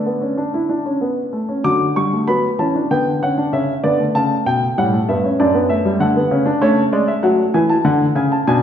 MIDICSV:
0, 0, Header, 1, 2, 480
1, 0, Start_track
1, 0, Key_signature, 2, "major"
1, 0, Tempo, 634249
1, 1253, Time_signature, 4, 2, 24, 8
1, 2205, Tempo, 617920
1, 6642, End_track
2, 0, Start_track
2, 0, Title_t, "Grand piano"
2, 0, Program_c, 0, 0
2, 0, Note_on_c, 0, 50, 67
2, 0, Note_on_c, 0, 74, 68
2, 45, Note_on_c, 0, 59, 57
2, 162, Note_off_c, 0, 59, 0
2, 163, Note_on_c, 0, 61, 54
2, 281, Note_off_c, 0, 61, 0
2, 284, Note_on_c, 0, 62, 56
2, 402, Note_off_c, 0, 62, 0
2, 407, Note_on_c, 0, 64, 55
2, 524, Note_off_c, 0, 64, 0
2, 524, Note_on_c, 0, 62, 55
2, 643, Note_off_c, 0, 62, 0
2, 649, Note_on_c, 0, 61, 57
2, 765, Note_on_c, 0, 59, 59
2, 767, Note_off_c, 0, 61, 0
2, 917, Note_off_c, 0, 59, 0
2, 980, Note_off_c, 0, 50, 0
2, 980, Note_off_c, 0, 74, 0
2, 1004, Note_on_c, 0, 57, 50
2, 1125, Note_on_c, 0, 61, 50
2, 1126, Note_off_c, 0, 57, 0
2, 1241, Note_on_c, 0, 54, 70
2, 1243, Note_on_c, 0, 50, 63
2, 1244, Note_on_c, 0, 86, 82
2, 1245, Note_off_c, 0, 61, 0
2, 1392, Note_off_c, 0, 54, 0
2, 1395, Note_off_c, 0, 86, 0
2, 1484, Note_on_c, 0, 55, 55
2, 1486, Note_on_c, 0, 85, 76
2, 1603, Note_off_c, 0, 55, 0
2, 1612, Note_on_c, 0, 57, 59
2, 1635, Note_off_c, 0, 85, 0
2, 1710, Note_off_c, 0, 50, 0
2, 1721, Note_on_c, 0, 54, 60
2, 1721, Note_on_c, 0, 83, 77
2, 1722, Note_on_c, 0, 59, 60
2, 1727, Note_off_c, 0, 57, 0
2, 1871, Note_off_c, 0, 54, 0
2, 1871, Note_off_c, 0, 59, 0
2, 1871, Note_off_c, 0, 83, 0
2, 1959, Note_on_c, 0, 52, 55
2, 1960, Note_on_c, 0, 61, 59
2, 1960, Note_on_c, 0, 81, 70
2, 2078, Note_off_c, 0, 61, 0
2, 2083, Note_on_c, 0, 62, 58
2, 2108, Note_off_c, 0, 52, 0
2, 2109, Note_off_c, 0, 81, 0
2, 2199, Note_off_c, 0, 62, 0
2, 2200, Note_on_c, 0, 50, 57
2, 2201, Note_on_c, 0, 59, 64
2, 2202, Note_on_c, 0, 79, 71
2, 2352, Note_off_c, 0, 59, 0
2, 2352, Note_off_c, 0, 79, 0
2, 2447, Note_on_c, 0, 61, 59
2, 2448, Note_on_c, 0, 78, 76
2, 2564, Note_off_c, 0, 61, 0
2, 2564, Note_on_c, 0, 62, 60
2, 2597, Note_off_c, 0, 78, 0
2, 2671, Note_off_c, 0, 50, 0
2, 2682, Note_off_c, 0, 62, 0
2, 2682, Note_on_c, 0, 61, 67
2, 2683, Note_on_c, 0, 49, 66
2, 2684, Note_on_c, 0, 76, 76
2, 2834, Note_off_c, 0, 49, 0
2, 2834, Note_off_c, 0, 61, 0
2, 2835, Note_off_c, 0, 76, 0
2, 2921, Note_on_c, 0, 74, 80
2, 2923, Note_on_c, 0, 50, 61
2, 2923, Note_on_c, 0, 59, 64
2, 3042, Note_on_c, 0, 57, 54
2, 3043, Note_off_c, 0, 59, 0
2, 3074, Note_off_c, 0, 74, 0
2, 3075, Note_off_c, 0, 50, 0
2, 3165, Note_on_c, 0, 81, 94
2, 3167, Note_on_c, 0, 49, 69
2, 3317, Note_off_c, 0, 81, 0
2, 3318, Note_off_c, 0, 49, 0
2, 3410, Note_on_c, 0, 47, 63
2, 3410, Note_on_c, 0, 79, 77
2, 3559, Note_off_c, 0, 47, 0
2, 3559, Note_off_c, 0, 79, 0
2, 3630, Note_off_c, 0, 57, 0
2, 3654, Note_on_c, 0, 55, 65
2, 3655, Note_on_c, 0, 45, 62
2, 3656, Note_on_c, 0, 78, 84
2, 3770, Note_off_c, 0, 55, 0
2, 3770, Note_on_c, 0, 57, 62
2, 3803, Note_off_c, 0, 45, 0
2, 3804, Note_off_c, 0, 78, 0
2, 3888, Note_off_c, 0, 57, 0
2, 3892, Note_on_c, 0, 59, 60
2, 3893, Note_on_c, 0, 76, 67
2, 3896, Note_on_c, 0, 43, 65
2, 4009, Note_off_c, 0, 59, 0
2, 4012, Note_on_c, 0, 61, 63
2, 4042, Note_off_c, 0, 76, 0
2, 4044, Note_off_c, 0, 43, 0
2, 4129, Note_off_c, 0, 61, 0
2, 4133, Note_on_c, 0, 42, 71
2, 4133, Note_on_c, 0, 62, 66
2, 4134, Note_on_c, 0, 74, 79
2, 4249, Note_off_c, 0, 62, 0
2, 4249, Note_on_c, 0, 59, 75
2, 4282, Note_off_c, 0, 74, 0
2, 4365, Note_on_c, 0, 57, 64
2, 4365, Note_on_c, 0, 76, 81
2, 4366, Note_off_c, 0, 59, 0
2, 4484, Note_off_c, 0, 57, 0
2, 4489, Note_on_c, 0, 55, 68
2, 4515, Note_off_c, 0, 76, 0
2, 4596, Note_off_c, 0, 42, 0
2, 4601, Note_on_c, 0, 50, 73
2, 4604, Note_on_c, 0, 57, 69
2, 4606, Note_off_c, 0, 55, 0
2, 4606, Note_on_c, 0, 78, 80
2, 4722, Note_off_c, 0, 57, 0
2, 4726, Note_on_c, 0, 59, 68
2, 4751, Note_off_c, 0, 50, 0
2, 4843, Note_off_c, 0, 59, 0
2, 4844, Note_on_c, 0, 49, 78
2, 4846, Note_on_c, 0, 61, 70
2, 4958, Note_on_c, 0, 62, 74
2, 4962, Note_off_c, 0, 61, 0
2, 4992, Note_off_c, 0, 49, 0
2, 5068, Note_off_c, 0, 78, 0
2, 5077, Note_off_c, 0, 62, 0
2, 5080, Note_on_c, 0, 57, 97
2, 5081, Note_on_c, 0, 61, 75
2, 5083, Note_on_c, 0, 73, 78
2, 5229, Note_off_c, 0, 57, 0
2, 5231, Note_off_c, 0, 73, 0
2, 5321, Note_on_c, 0, 56, 91
2, 5323, Note_on_c, 0, 74, 72
2, 5439, Note_off_c, 0, 74, 0
2, 5439, Note_on_c, 0, 76, 75
2, 5469, Note_off_c, 0, 56, 0
2, 5545, Note_off_c, 0, 61, 0
2, 5555, Note_on_c, 0, 57, 66
2, 5556, Note_off_c, 0, 76, 0
2, 5557, Note_on_c, 0, 78, 66
2, 5558, Note_on_c, 0, 54, 90
2, 5706, Note_off_c, 0, 78, 0
2, 5707, Note_off_c, 0, 54, 0
2, 5799, Note_on_c, 0, 80, 68
2, 5801, Note_on_c, 0, 52, 87
2, 5915, Note_off_c, 0, 80, 0
2, 5919, Note_on_c, 0, 81, 74
2, 5948, Note_off_c, 0, 52, 0
2, 6035, Note_off_c, 0, 81, 0
2, 6036, Note_on_c, 0, 50, 96
2, 6037, Note_on_c, 0, 78, 69
2, 6186, Note_off_c, 0, 50, 0
2, 6187, Note_off_c, 0, 78, 0
2, 6275, Note_on_c, 0, 49, 86
2, 6279, Note_on_c, 0, 80, 65
2, 6396, Note_off_c, 0, 80, 0
2, 6404, Note_on_c, 0, 81, 70
2, 6426, Note_off_c, 0, 49, 0
2, 6489, Note_off_c, 0, 57, 0
2, 6519, Note_off_c, 0, 81, 0
2, 6524, Note_on_c, 0, 62, 74
2, 6524, Note_on_c, 0, 80, 81
2, 6525, Note_on_c, 0, 47, 92
2, 6642, Note_off_c, 0, 47, 0
2, 6642, Note_off_c, 0, 62, 0
2, 6642, Note_off_c, 0, 80, 0
2, 6642, End_track
0, 0, End_of_file